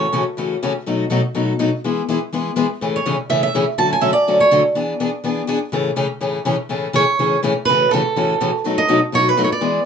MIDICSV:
0, 0, Header, 1, 3, 480
1, 0, Start_track
1, 0, Key_signature, 3, "major"
1, 0, Tempo, 243210
1, 1680, Time_signature, 4, 2, 24, 8
1, 19444, End_track
2, 0, Start_track
2, 0, Title_t, "Steel-string acoustic guitar"
2, 0, Program_c, 0, 25
2, 0, Note_on_c, 0, 73, 75
2, 457, Note_off_c, 0, 73, 0
2, 5839, Note_on_c, 0, 73, 71
2, 6258, Note_off_c, 0, 73, 0
2, 6509, Note_on_c, 0, 76, 74
2, 6744, Note_off_c, 0, 76, 0
2, 6768, Note_on_c, 0, 76, 86
2, 7201, Note_off_c, 0, 76, 0
2, 7467, Note_on_c, 0, 81, 94
2, 7697, Note_off_c, 0, 81, 0
2, 7749, Note_on_c, 0, 80, 81
2, 7922, Note_on_c, 0, 76, 80
2, 7929, Note_off_c, 0, 80, 0
2, 8140, Note_off_c, 0, 76, 0
2, 8147, Note_on_c, 0, 74, 88
2, 8609, Note_off_c, 0, 74, 0
2, 8692, Note_on_c, 0, 73, 75
2, 9123, Note_off_c, 0, 73, 0
2, 13726, Note_on_c, 0, 73, 97
2, 14596, Note_off_c, 0, 73, 0
2, 15105, Note_on_c, 0, 71, 107
2, 15606, Note_off_c, 0, 71, 0
2, 15612, Note_on_c, 0, 69, 81
2, 16749, Note_off_c, 0, 69, 0
2, 17326, Note_on_c, 0, 75, 94
2, 17761, Note_off_c, 0, 75, 0
2, 18057, Note_on_c, 0, 73, 89
2, 18324, Note_off_c, 0, 73, 0
2, 18324, Note_on_c, 0, 71, 83
2, 18622, Note_off_c, 0, 71, 0
2, 18634, Note_on_c, 0, 73, 65
2, 18764, Note_off_c, 0, 73, 0
2, 18796, Note_on_c, 0, 74, 72
2, 19444, Note_off_c, 0, 74, 0
2, 19444, End_track
3, 0, Start_track
3, 0, Title_t, "Steel-string acoustic guitar"
3, 0, Program_c, 1, 25
3, 247, Note_on_c, 1, 45, 75
3, 254, Note_on_c, 1, 49, 71
3, 255, Note_on_c, 1, 52, 68
3, 268, Note_on_c, 1, 57, 79
3, 270, Note_on_c, 1, 61, 81
3, 279, Note_on_c, 1, 66, 81
3, 439, Note_off_c, 1, 45, 0
3, 442, Note_off_c, 1, 49, 0
3, 443, Note_off_c, 1, 52, 0
3, 449, Note_off_c, 1, 57, 0
3, 450, Note_off_c, 1, 61, 0
3, 455, Note_off_c, 1, 66, 0
3, 730, Note_on_c, 1, 45, 57
3, 748, Note_on_c, 1, 49, 63
3, 753, Note_on_c, 1, 52, 60
3, 755, Note_on_c, 1, 61, 60
3, 759, Note_on_c, 1, 57, 64
3, 769, Note_on_c, 1, 66, 63
3, 1076, Note_off_c, 1, 45, 0
3, 1084, Note_off_c, 1, 49, 0
3, 1087, Note_off_c, 1, 52, 0
3, 1088, Note_off_c, 1, 61, 0
3, 1090, Note_off_c, 1, 57, 0
3, 1095, Note_off_c, 1, 66, 0
3, 1233, Note_on_c, 1, 45, 72
3, 1237, Note_on_c, 1, 49, 75
3, 1237, Note_on_c, 1, 52, 76
3, 1248, Note_on_c, 1, 57, 70
3, 1251, Note_on_c, 1, 66, 86
3, 1258, Note_on_c, 1, 61, 84
3, 1412, Note_off_c, 1, 45, 0
3, 1413, Note_off_c, 1, 49, 0
3, 1414, Note_off_c, 1, 52, 0
3, 1419, Note_off_c, 1, 57, 0
3, 1421, Note_off_c, 1, 66, 0
3, 1424, Note_off_c, 1, 61, 0
3, 1704, Note_on_c, 1, 47, 57
3, 1714, Note_on_c, 1, 57, 61
3, 1718, Note_on_c, 1, 63, 58
3, 1721, Note_on_c, 1, 54, 59
3, 1737, Note_on_c, 1, 66, 59
3, 2042, Note_off_c, 1, 47, 0
3, 2047, Note_off_c, 1, 57, 0
3, 2050, Note_off_c, 1, 63, 0
3, 2051, Note_off_c, 1, 54, 0
3, 2059, Note_off_c, 1, 66, 0
3, 2169, Note_on_c, 1, 47, 73
3, 2176, Note_on_c, 1, 54, 79
3, 2190, Note_on_c, 1, 57, 80
3, 2197, Note_on_c, 1, 66, 78
3, 2199, Note_on_c, 1, 63, 81
3, 2359, Note_off_c, 1, 47, 0
3, 2363, Note_off_c, 1, 54, 0
3, 2370, Note_off_c, 1, 57, 0
3, 2373, Note_off_c, 1, 66, 0
3, 2374, Note_off_c, 1, 63, 0
3, 2655, Note_on_c, 1, 47, 56
3, 2657, Note_on_c, 1, 57, 61
3, 2667, Note_on_c, 1, 54, 59
3, 2675, Note_on_c, 1, 63, 61
3, 2680, Note_on_c, 1, 66, 68
3, 2998, Note_off_c, 1, 47, 0
3, 2999, Note_off_c, 1, 57, 0
3, 3004, Note_off_c, 1, 54, 0
3, 3008, Note_off_c, 1, 63, 0
3, 3010, Note_off_c, 1, 66, 0
3, 3140, Note_on_c, 1, 47, 76
3, 3143, Note_on_c, 1, 54, 76
3, 3153, Note_on_c, 1, 57, 83
3, 3156, Note_on_c, 1, 63, 77
3, 3164, Note_on_c, 1, 66, 76
3, 3325, Note_off_c, 1, 47, 0
3, 3326, Note_off_c, 1, 54, 0
3, 3331, Note_off_c, 1, 57, 0
3, 3333, Note_off_c, 1, 63, 0
3, 3337, Note_off_c, 1, 66, 0
3, 3637, Note_on_c, 1, 56, 57
3, 3641, Note_on_c, 1, 52, 56
3, 3653, Note_on_c, 1, 59, 64
3, 3655, Note_on_c, 1, 64, 59
3, 3661, Note_on_c, 1, 68, 57
3, 3969, Note_off_c, 1, 56, 0
3, 3970, Note_off_c, 1, 52, 0
3, 3976, Note_off_c, 1, 59, 0
3, 3977, Note_off_c, 1, 64, 0
3, 3981, Note_off_c, 1, 68, 0
3, 4115, Note_on_c, 1, 52, 74
3, 4122, Note_on_c, 1, 56, 76
3, 4139, Note_on_c, 1, 59, 82
3, 4139, Note_on_c, 1, 64, 72
3, 4151, Note_on_c, 1, 68, 82
3, 4292, Note_off_c, 1, 52, 0
3, 4296, Note_off_c, 1, 56, 0
3, 4304, Note_off_c, 1, 59, 0
3, 4304, Note_off_c, 1, 64, 0
3, 4310, Note_off_c, 1, 68, 0
3, 4589, Note_on_c, 1, 52, 54
3, 4603, Note_on_c, 1, 56, 55
3, 4612, Note_on_c, 1, 59, 58
3, 4614, Note_on_c, 1, 64, 58
3, 4614, Note_on_c, 1, 68, 64
3, 4925, Note_off_c, 1, 52, 0
3, 4931, Note_off_c, 1, 56, 0
3, 4936, Note_off_c, 1, 59, 0
3, 4937, Note_off_c, 1, 64, 0
3, 4937, Note_off_c, 1, 68, 0
3, 5049, Note_on_c, 1, 52, 68
3, 5055, Note_on_c, 1, 56, 77
3, 5065, Note_on_c, 1, 59, 78
3, 5071, Note_on_c, 1, 64, 83
3, 5074, Note_on_c, 1, 68, 70
3, 5239, Note_off_c, 1, 52, 0
3, 5242, Note_off_c, 1, 56, 0
3, 5247, Note_off_c, 1, 59, 0
3, 5250, Note_off_c, 1, 64, 0
3, 5251, Note_off_c, 1, 68, 0
3, 5551, Note_on_c, 1, 49, 58
3, 5552, Note_on_c, 1, 45, 60
3, 5570, Note_on_c, 1, 57, 60
3, 5571, Note_on_c, 1, 61, 59
3, 5574, Note_on_c, 1, 52, 69
3, 5578, Note_on_c, 1, 68, 61
3, 5885, Note_off_c, 1, 45, 0
3, 5885, Note_off_c, 1, 49, 0
3, 5895, Note_off_c, 1, 57, 0
3, 5895, Note_off_c, 1, 61, 0
3, 5897, Note_off_c, 1, 52, 0
3, 5899, Note_off_c, 1, 68, 0
3, 6032, Note_on_c, 1, 45, 82
3, 6036, Note_on_c, 1, 52, 81
3, 6044, Note_on_c, 1, 57, 74
3, 6047, Note_on_c, 1, 49, 71
3, 6054, Note_on_c, 1, 61, 82
3, 6058, Note_on_c, 1, 68, 70
3, 6210, Note_off_c, 1, 45, 0
3, 6212, Note_off_c, 1, 52, 0
3, 6216, Note_off_c, 1, 57, 0
3, 6218, Note_off_c, 1, 49, 0
3, 6221, Note_off_c, 1, 61, 0
3, 6223, Note_off_c, 1, 68, 0
3, 6503, Note_on_c, 1, 49, 68
3, 6505, Note_on_c, 1, 45, 60
3, 6513, Note_on_c, 1, 61, 62
3, 6514, Note_on_c, 1, 57, 66
3, 6517, Note_on_c, 1, 52, 58
3, 6525, Note_on_c, 1, 68, 67
3, 6841, Note_off_c, 1, 49, 0
3, 6842, Note_off_c, 1, 45, 0
3, 6846, Note_off_c, 1, 61, 0
3, 6847, Note_off_c, 1, 57, 0
3, 6848, Note_off_c, 1, 52, 0
3, 6852, Note_off_c, 1, 68, 0
3, 6994, Note_on_c, 1, 45, 68
3, 7004, Note_on_c, 1, 49, 79
3, 7004, Note_on_c, 1, 57, 83
3, 7010, Note_on_c, 1, 52, 74
3, 7019, Note_on_c, 1, 61, 89
3, 7022, Note_on_c, 1, 68, 80
3, 7171, Note_off_c, 1, 45, 0
3, 7176, Note_off_c, 1, 49, 0
3, 7176, Note_off_c, 1, 57, 0
3, 7179, Note_off_c, 1, 52, 0
3, 7183, Note_off_c, 1, 61, 0
3, 7185, Note_off_c, 1, 68, 0
3, 7458, Note_on_c, 1, 50, 55
3, 7459, Note_on_c, 1, 54, 58
3, 7471, Note_on_c, 1, 57, 62
3, 7474, Note_on_c, 1, 61, 69
3, 7479, Note_on_c, 1, 66, 63
3, 7798, Note_off_c, 1, 50, 0
3, 7799, Note_off_c, 1, 54, 0
3, 7805, Note_off_c, 1, 57, 0
3, 7807, Note_off_c, 1, 61, 0
3, 7809, Note_off_c, 1, 66, 0
3, 7912, Note_on_c, 1, 50, 68
3, 7925, Note_on_c, 1, 54, 71
3, 7931, Note_on_c, 1, 57, 75
3, 7931, Note_on_c, 1, 61, 83
3, 7945, Note_on_c, 1, 66, 83
3, 8110, Note_off_c, 1, 50, 0
3, 8116, Note_off_c, 1, 54, 0
3, 8119, Note_off_c, 1, 57, 0
3, 8119, Note_off_c, 1, 61, 0
3, 8127, Note_off_c, 1, 66, 0
3, 8440, Note_on_c, 1, 50, 61
3, 8447, Note_on_c, 1, 54, 59
3, 8452, Note_on_c, 1, 57, 62
3, 8454, Note_on_c, 1, 61, 67
3, 8462, Note_on_c, 1, 66, 75
3, 8769, Note_off_c, 1, 50, 0
3, 8773, Note_off_c, 1, 54, 0
3, 8775, Note_off_c, 1, 57, 0
3, 8776, Note_off_c, 1, 61, 0
3, 8780, Note_off_c, 1, 66, 0
3, 8908, Note_on_c, 1, 50, 86
3, 8909, Note_on_c, 1, 54, 74
3, 8920, Note_on_c, 1, 57, 77
3, 8922, Note_on_c, 1, 61, 82
3, 8936, Note_on_c, 1, 66, 92
3, 9088, Note_off_c, 1, 50, 0
3, 9088, Note_off_c, 1, 54, 0
3, 9094, Note_off_c, 1, 57, 0
3, 9095, Note_off_c, 1, 61, 0
3, 9102, Note_off_c, 1, 66, 0
3, 9380, Note_on_c, 1, 52, 59
3, 9381, Note_on_c, 1, 59, 66
3, 9390, Note_on_c, 1, 62, 60
3, 9400, Note_on_c, 1, 68, 67
3, 9719, Note_off_c, 1, 52, 0
3, 9720, Note_off_c, 1, 59, 0
3, 9724, Note_off_c, 1, 62, 0
3, 9729, Note_off_c, 1, 68, 0
3, 9868, Note_on_c, 1, 52, 73
3, 9873, Note_on_c, 1, 59, 71
3, 9876, Note_on_c, 1, 62, 77
3, 9889, Note_on_c, 1, 68, 78
3, 10047, Note_off_c, 1, 52, 0
3, 10050, Note_off_c, 1, 59, 0
3, 10051, Note_off_c, 1, 62, 0
3, 10058, Note_off_c, 1, 68, 0
3, 10334, Note_on_c, 1, 52, 63
3, 10349, Note_on_c, 1, 59, 68
3, 10355, Note_on_c, 1, 62, 66
3, 10372, Note_on_c, 1, 68, 66
3, 10676, Note_off_c, 1, 52, 0
3, 10683, Note_off_c, 1, 59, 0
3, 10686, Note_off_c, 1, 62, 0
3, 10695, Note_off_c, 1, 68, 0
3, 10802, Note_on_c, 1, 52, 79
3, 10823, Note_on_c, 1, 59, 80
3, 10828, Note_on_c, 1, 62, 79
3, 10828, Note_on_c, 1, 68, 87
3, 10995, Note_off_c, 1, 52, 0
3, 11005, Note_off_c, 1, 59, 0
3, 11007, Note_off_c, 1, 62, 0
3, 11008, Note_off_c, 1, 68, 0
3, 11289, Note_on_c, 1, 45, 62
3, 11304, Note_on_c, 1, 49, 57
3, 11310, Note_on_c, 1, 52, 56
3, 11310, Note_on_c, 1, 61, 61
3, 11312, Note_on_c, 1, 57, 71
3, 11315, Note_on_c, 1, 68, 66
3, 11633, Note_off_c, 1, 45, 0
3, 11641, Note_off_c, 1, 49, 0
3, 11643, Note_off_c, 1, 52, 0
3, 11644, Note_off_c, 1, 61, 0
3, 11645, Note_off_c, 1, 57, 0
3, 11646, Note_off_c, 1, 68, 0
3, 11763, Note_on_c, 1, 45, 67
3, 11772, Note_on_c, 1, 49, 79
3, 11772, Note_on_c, 1, 52, 83
3, 11779, Note_on_c, 1, 57, 79
3, 11783, Note_on_c, 1, 61, 80
3, 11785, Note_on_c, 1, 68, 78
3, 11955, Note_off_c, 1, 45, 0
3, 11959, Note_off_c, 1, 49, 0
3, 11959, Note_off_c, 1, 52, 0
3, 11963, Note_off_c, 1, 57, 0
3, 11965, Note_off_c, 1, 61, 0
3, 11966, Note_off_c, 1, 68, 0
3, 12247, Note_on_c, 1, 45, 61
3, 12259, Note_on_c, 1, 57, 62
3, 12260, Note_on_c, 1, 49, 60
3, 12264, Note_on_c, 1, 61, 64
3, 12265, Note_on_c, 1, 52, 56
3, 12283, Note_on_c, 1, 68, 65
3, 12592, Note_off_c, 1, 45, 0
3, 12598, Note_off_c, 1, 49, 0
3, 12598, Note_off_c, 1, 57, 0
3, 12601, Note_off_c, 1, 52, 0
3, 12601, Note_off_c, 1, 61, 0
3, 12610, Note_off_c, 1, 68, 0
3, 12732, Note_on_c, 1, 45, 82
3, 12733, Note_on_c, 1, 49, 72
3, 12744, Note_on_c, 1, 57, 71
3, 12746, Note_on_c, 1, 61, 82
3, 12747, Note_on_c, 1, 52, 79
3, 12762, Note_on_c, 1, 68, 75
3, 12919, Note_off_c, 1, 45, 0
3, 12920, Note_off_c, 1, 49, 0
3, 12926, Note_off_c, 1, 57, 0
3, 12926, Note_off_c, 1, 61, 0
3, 12927, Note_off_c, 1, 52, 0
3, 12934, Note_off_c, 1, 68, 0
3, 13205, Note_on_c, 1, 45, 51
3, 13209, Note_on_c, 1, 52, 55
3, 13216, Note_on_c, 1, 49, 54
3, 13218, Note_on_c, 1, 57, 58
3, 13227, Note_on_c, 1, 68, 60
3, 13235, Note_on_c, 1, 61, 68
3, 13551, Note_off_c, 1, 45, 0
3, 13553, Note_off_c, 1, 52, 0
3, 13557, Note_off_c, 1, 49, 0
3, 13558, Note_off_c, 1, 57, 0
3, 13562, Note_off_c, 1, 68, 0
3, 13566, Note_off_c, 1, 61, 0
3, 13683, Note_on_c, 1, 49, 80
3, 13686, Note_on_c, 1, 52, 74
3, 13688, Note_on_c, 1, 45, 68
3, 13700, Note_on_c, 1, 57, 76
3, 13701, Note_on_c, 1, 61, 75
3, 13705, Note_on_c, 1, 68, 77
3, 13875, Note_off_c, 1, 49, 0
3, 13876, Note_off_c, 1, 52, 0
3, 13878, Note_off_c, 1, 45, 0
3, 13884, Note_off_c, 1, 57, 0
3, 13884, Note_off_c, 1, 61, 0
3, 13886, Note_off_c, 1, 68, 0
3, 14191, Note_on_c, 1, 49, 59
3, 14193, Note_on_c, 1, 45, 60
3, 14195, Note_on_c, 1, 57, 57
3, 14196, Note_on_c, 1, 52, 58
3, 14209, Note_on_c, 1, 68, 62
3, 14213, Note_on_c, 1, 61, 66
3, 14525, Note_off_c, 1, 45, 0
3, 14525, Note_off_c, 1, 49, 0
3, 14527, Note_off_c, 1, 52, 0
3, 14527, Note_off_c, 1, 57, 0
3, 14533, Note_off_c, 1, 68, 0
3, 14535, Note_off_c, 1, 61, 0
3, 14657, Note_on_c, 1, 45, 72
3, 14671, Note_on_c, 1, 49, 72
3, 14673, Note_on_c, 1, 52, 74
3, 14676, Note_on_c, 1, 57, 78
3, 14685, Note_on_c, 1, 61, 84
3, 14688, Note_on_c, 1, 68, 83
3, 14842, Note_off_c, 1, 45, 0
3, 14849, Note_off_c, 1, 49, 0
3, 14850, Note_off_c, 1, 52, 0
3, 14851, Note_off_c, 1, 57, 0
3, 14856, Note_off_c, 1, 61, 0
3, 14857, Note_off_c, 1, 68, 0
3, 15167, Note_on_c, 1, 49, 56
3, 15171, Note_on_c, 1, 45, 59
3, 15175, Note_on_c, 1, 52, 68
3, 15181, Note_on_c, 1, 57, 59
3, 15182, Note_on_c, 1, 61, 63
3, 15187, Note_on_c, 1, 66, 65
3, 15493, Note_off_c, 1, 49, 0
3, 15495, Note_off_c, 1, 45, 0
3, 15497, Note_off_c, 1, 52, 0
3, 15500, Note_off_c, 1, 57, 0
3, 15500, Note_off_c, 1, 61, 0
3, 15503, Note_off_c, 1, 66, 0
3, 15651, Note_on_c, 1, 45, 72
3, 15654, Note_on_c, 1, 52, 81
3, 15657, Note_on_c, 1, 49, 69
3, 15662, Note_on_c, 1, 57, 79
3, 15663, Note_on_c, 1, 61, 79
3, 15669, Note_on_c, 1, 66, 77
3, 15819, Note_off_c, 1, 45, 0
3, 15821, Note_off_c, 1, 52, 0
3, 15822, Note_off_c, 1, 49, 0
3, 15825, Note_off_c, 1, 57, 0
3, 15826, Note_off_c, 1, 61, 0
3, 15828, Note_off_c, 1, 66, 0
3, 16108, Note_on_c, 1, 45, 64
3, 16110, Note_on_c, 1, 52, 62
3, 16120, Note_on_c, 1, 49, 58
3, 16126, Note_on_c, 1, 61, 64
3, 16127, Note_on_c, 1, 66, 69
3, 16129, Note_on_c, 1, 57, 62
3, 16444, Note_off_c, 1, 45, 0
3, 16444, Note_off_c, 1, 52, 0
3, 16450, Note_off_c, 1, 49, 0
3, 16453, Note_off_c, 1, 61, 0
3, 16453, Note_off_c, 1, 66, 0
3, 16454, Note_off_c, 1, 57, 0
3, 16588, Note_on_c, 1, 49, 75
3, 16593, Note_on_c, 1, 45, 72
3, 16598, Note_on_c, 1, 57, 74
3, 16602, Note_on_c, 1, 52, 85
3, 16603, Note_on_c, 1, 61, 80
3, 16612, Note_on_c, 1, 66, 82
3, 16768, Note_off_c, 1, 49, 0
3, 16771, Note_off_c, 1, 45, 0
3, 16773, Note_off_c, 1, 57, 0
3, 16775, Note_off_c, 1, 52, 0
3, 16775, Note_off_c, 1, 61, 0
3, 16780, Note_off_c, 1, 66, 0
3, 17058, Note_on_c, 1, 47, 56
3, 17071, Note_on_c, 1, 54, 59
3, 17078, Note_on_c, 1, 57, 65
3, 17083, Note_on_c, 1, 63, 66
3, 17091, Note_on_c, 1, 66, 62
3, 17399, Note_off_c, 1, 47, 0
3, 17405, Note_off_c, 1, 54, 0
3, 17409, Note_off_c, 1, 57, 0
3, 17411, Note_off_c, 1, 63, 0
3, 17416, Note_off_c, 1, 66, 0
3, 17531, Note_on_c, 1, 47, 74
3, 17539, Note_on_c, 1, 54, 81
3, 17547, Note_on_c, 1, 57, 76
3, 17558, Note_on_c, 1, 63, 78
3, 17558, Note_on_c, 1, 66, 87
3, 17720, Note_off_c, 1, 47, 0
3, 17724, Note_off_c, 1, 54, 0
3, 17728, Note_off_c, 1, 57, 0
3, 17734, Note_off_c, 1, 63, 0
3, 17734, Note_off_c, 1, 66, 0
3, 18006, Note_on_c, 1, 47, 60
3, 18021, Note_on_c, 1, 54, 63
3, 18021, Note_on_c, 1, 63, 58
3, 18030, Note_on_c, 1, 57, 57
3, 18039, Note_on_c, 1, 66, 70
3, 18354, Note_off_c, 1, 47, 0
3, 18361, Note_off_c, 1, 54, 0
3, 18361, Note_off_c, 1, 63, 0
3, 18366, Note_off_c, 1, 57, 0
3, 18370, Note_off_c, 1, 66, 0
3, 18497, Note_on_c, 1, 47, 72
3, 18498, Note_on_c, 1, 54, 75
3, 18505, Note_on_c, 1, 57, 84
3, 18514, Note_on_c, 1, 63, 74
3, 18521, Note_on_c, 1, 66, 93
3, 18684, Note_off_c, 1, 47, 0
3, 18684, Note_off_c, 1, 54, 0
3, 18688, Note_off_c, 1, 57, 0
3, 18692, Note_off_c, 1, 63, 0
3, 18696, Note_off_c, 1, 66, 0
3, 18961, Note_on_c, 1, 52, 60
3, 18969, Note_on_c, 1, 56, 64
3, 18973, Note_on_c, 1, 59, 65
3, 18974, Note_on_c, 1, 64, 58
3, 18981, Note_on_c, 1, 68, 62
3, 19312, Note_off_c, 1, 52, 0
3, 19316, Note_off_c, 1, 56, 0
3, 19318, Note_off_c, 1, 59, 0
3, 19318, Note_off_c, 1, 64, 0
3, 19321, Note_off_c, 1, 68, 0
3, 19444, End_track
0, 0, End_of_file